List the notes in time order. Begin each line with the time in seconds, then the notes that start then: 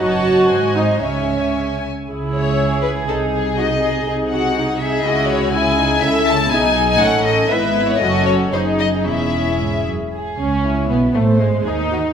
0.01 F#1 F#2 F#4 C#5 D#5 A5
0.51 G#1 G#2 C5 D#5 G#5
0.77 D#4
1.01 C#2 C#3 C#4 C#5 E5 G#5
2.09 C#2 C#3 E4 G#4
2.34 C#5
2.58 G#4
2.82 B4
3.08 C2 C3 D#4 G#4 A4
3.34 G#4
3.58 D#4 F#4 G#4 D#5
3.83 G#4
4.06 C2 C3 D#4 G#4
4.30 F#4 F#5
4.56 D#4
4.80 G#4 E5
5.04 C#2 C#3 E4 F#4 G#4 D#5
5.30 C#5
5.54 E4 G#4 G#5
5.79 D#4
6.02 C#2 C#3 C#4 E4 A4 E5
6.26 A5
6.51 B1 B2 D#4 G#4 G#5
6.90 G#5
7.01 A1 A2 C#4 A4 F#5
7.26 D#5
7.51 G#1 G#2 B3 E4 B4 E5
7.89 C#5
8.00 F#1 F#2 C#4 F#4 A4 D#5
8.26 C#5
8.53 F#1 F#2 D#4 G#4 C5
8.80 D#5
9.06 E1 E2 C#4 E4 G#4 E5
9.60 G#2
9.87 F#2
10.14 G#4
10.39 C#2 C#3 C#4
10.65 E4
10.91 B1 B2 B3
11.15 A1 A2 A3 C5
11.40 G#1 G#2 G#3
11.65 D#2 D#3 D#4 G#4
11.91 F#4